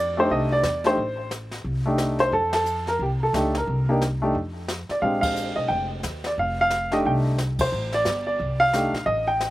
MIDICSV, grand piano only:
0, 0, Header, 1, 2, 480
1, 0, Start_track
1, 0, Tempo, 337268
1, 1395, Time_signature, 4, 2, 24, 8
1, 13525, End_track
2, 0, Start_track
2, 0, Title_t, "Grand piano"
2, 0, Program_c, 0, 0
2, 0, Note_on_c, 0, 74, 104
2, 240, Note_off_c, 0, 74, 0
2, 245, Note_on_c, 0, 57, 73
2, 249, Note_on_c, 0, 62, 65
2, 257, Note_on_c, 0, 63, 66
2, 260, Note_on_c, 0, 67, 73
2, 283, Note_on_c, 0, 72, 90
2, 439, Note_off_c, 0, 72, 0
2, 447, Note_on_c, 0, 75, 92
2, 717, Note_off_c, 0, 75, 0
2, 745, Note_on_c, 0, 74, 102
2, 875, Note_off_c, 0, 57, 0
2, 877, Note_off_c, 0, 62, 0
2, 881, Note_off_c, 0, 63, 0
2, 883, Note_off_c, 0, 67, 0
2, 1208, Note_on_c, 0, 57, 66
2, 1215, Note_on_c, 0, 62, 61
2, 1218, Note_on_c, 0, 63, 61
2, 1220, Note_on_c, 0, 67, 74
2, 1232, Note_off_c, 0, 74, 0
2, 1233, Note_on_c, 0, 72, 94
2, 1375, Note_off_c, 0, 57, 0
2, 1379, Note_off_c, 0, 62, 0
2, 1380, Note_off_c, 0, 63, 0
2, 1381, Note_off_c, 0, 67, 0
2, 1840, Note_off_c, 0, 72, 0
2, 2642, Note_on_c, 0, 57, 68
2, 2656, Note_on_c, 0, 62, 63
2, 2659, Note_on_c, 0, 63, 61
2, 2668, Note_on_c, 0, 67, 69
2, 3134, Note_on_c, 0, 72, 102
2, 3274, Note_off_c, 0, 57, 0
2, 3281, Note_off_c, 0, 62, 0
2, 3283, Note_off_c, 0, 63, 0
2, 3287, Note_off_c, 0, 67, 0
2, 3304, Note_off_c, 0, 72, 0
2, 3319, Note_on_c, 0, 69, 97
2, 3597, Note_off_c, 0, 69, 0
2, 3619, Note_on_c, 0, 69, 95
2, 4062, Note_off_c, 0, 69, 0
2, 4105, Note_on_c, 0, 70, 88
2, 4270, Note_off_c, 0, 70, 0
2, 4305, Note_on_c, 0, 67, 74
2, 4376, Note_off_c, 0, 67, 0
2, 4598, Note_on_c, 0, 69, 86
2, 4754, Note_on_c, 0, 57, 68
2, 4758, Note_on_c, 0, 62, 59
2, 4761, Note_on_c, 0, 63, 61
2, 4769, Note_on_c, 0, 67, 74
2, 5022, Note_off_c, 0, 57, 0
2, 5024, Note_off_c, 0, 62, 0
2, 5025, Note_off_c, 0, 63, 0
2, 5029, Note_off_c, 0, 67, 0
2, 5079, Note_off_c, 0, 69, 0
2, 5088, Note_on_c, 0, 70, 77
2, 5534, Note_on_c, 0, 58, 72
2, 5541, Note_on_c, 0, 62, 63
2, 5543, Note_on_c, 0, 63, 64
2, 5556, Note_on_c, 0, 67, 78
2, 5689, Note_off_c, 0, 70, 0
2, 5699, Note_off_c, 0, 58, 0
2, 5702, Note_off_c, 0, 62, 0
2, 5703, Note_off_c, 0, 63, 0
2, 5710, Note_off_c, 0, 67, 0
2, 6003, Note_on_c, 0, 57, 70
2, 6010, Note_on_c, 0, 62, 63
2, 6014, Note_on_c, 0, 63, 64
2, 6027, Note_on_c, 0, 67, 74
2, 6174, Note_off_c, 0, 57, 0
2, 6177, Note_off_c, 0, 62, 0
2, 6179, Note_off_c, 0, 63, 0
2, 6186, Note_off_c, 0, 67, 0
2, 6988, Note_on_c, 0, 74, 73
2, 7059, Note_off_c, 0, 74, 0
2, 7142, Note_on_c, 0, 56, 63
2, 7143, Note_on_c, 0, 77, 80
2, 7154, Note_on_c, 0, 62, 53
2, 7157, Note_on_c, 0, 60, 55
2, 7169, Note_on_c, 0, 67, 68
2, 7397, Note_off_c, 0, 77, 0
2, 7419, Note_on_c, 0, 77, 82
2, 7882, Note_off_c, 0, 77, 0
2, 7910, Note_on_c, 0, 75, 81
2, 8088, Note_on_c, 0, 79, 93
2, 8092, Note_off_c, 0, 75, 0
2, 8377, Note_off_c, 0, 79, 0
2, 8480, Note_off_c, 0, 56, 0
2, 8486, Note_off_c, 0, 62, 0
2, 8488, Note_off_c, 0, 60, 0
2, 8493, Note_off_c, 0, 67, 0
2, 8917, Note_on_c, 0, 74, 74
2, 8988, Note_off_c, 0, 74, 0
2, 9099, Note_on_c, 0, 77, 80
2, 9365, Note_off_c, 0, 77, 0
2, 9408, Note_on_c, 0, 77, 104
2, 9839, Note_off_c, 0, 77, 0
2, 9842, Note_on_c, 0, 57, 71
2, 9854, Note_on_c, 0, 62, 65
2, 9860, Note_on_c, 0, 63, 64
2, 9862, Note_on_c, 0, 67, 80
2, 9867, Note_on_c, 0, 75, 80
2, 9938, Note_off_c, 0, 75, 0
2, 10054, Note_on_c, 0, 79, 83
2, 10125, Note_off_c, 0, 79, 0
2, 10476, Note_off_c, 0, 57, 0
2, 10481, Note_off_c, 0, 62, 0
2, 10484, Note_off_c, 0, 63, 0
2, 10485, Note_off_c, 0, 67, 0
2, 10829, Note_on_c, 0, 72, 84
2, 11305, Note_on_c, 0, 74, 102
2, 11316, Note_off_c, 0, 72, 0
2, 11745, Note_off_c, 0, 74, 0
2, 11767, Note_on_c, 0, 74, 86
2, 12237, Note_on_c, 0, 77, 114
2, 12265, Note_off_c, 0, 74, 0
2, 12429, Note_on_c, 0, 57, 60
2, 12436, Note_on_c, 0, 63, 52
2, 12437, Note_on_c, 0, 62, 55
2, 12444, Note_on_c, 0, 67, 70
2, 12700, Note_off_c, 0, 57, 0
2, 12703, Note_off_c, 0, 62, 0
2, 12703, Note_off_c, 0, 63, 0
2, 12707, Note_off_c, 0, 67, 0
2, 12862, Note_off_c, 0, 77, 0
2, 12894, Note_on_c, 0, 75, 99
2, 13180, Note_off_c, 0, 75, 0
2, 13200, Note_on_c, 0, 79, 99
2, 13525, Note_off_c, 0, 79, 0
2, 13525, End_track
0, 0, End_of_file